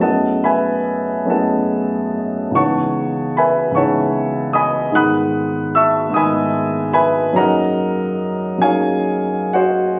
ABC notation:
X:1
M:6/8
L:1/8
Q:3/8=48
K:G#phr
V:1 name="Grand piano"
[Adfa] [Begb]2 [Adfa]2 z | [cfac']2 [Begb] [cfac']2 [dgbd'] | [fbd'f']2 [eac'e'] [dgbd']2 [Begb] | [K:Gblyd] [Begb]3 [Adfa]2 [Gceg] |]
V:2 name="Grand piano"
[F,,A,B,EG]3 [F,,A,B,EG]3 | [C,,E,B,DG]3 [C,,E,B,DG]3 | [G,,D,B,DG]3 [G,,D,B,DG]3 | [K:Gblyd] [G,,G,B,EA]3 [G,,G,B,E]3 |]